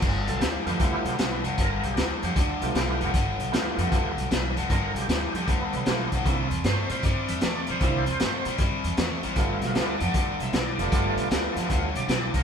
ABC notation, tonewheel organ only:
X:1
M:4/4
L:1/8
Q:"Swing" 1/4=154
K:Gmix
V:1 name="Tonewheel organ"
z A G2 E B,2 z | _B G2 G D2 z2 | z8 | _B G2 G =B,2 z2 |
z2 c c d e d c | c4 z4 | z2 d d d e d d | d4 z [^cd]2 _B |]
V:2 name="Tonewheel organ"
z3 [A,B,FG]3 z2 | z4 z [A,B,FG]3 | z2 [A,B,FG]3 z3 | z6 [A,B,FG] z |
[_B,CDE] z6 z | [_B,CDE] z6 z | [G,A,B,F]3 z4 [G,A,B,F]- | [G,A,B,F]2 [G,A,B,F]3 z3 |]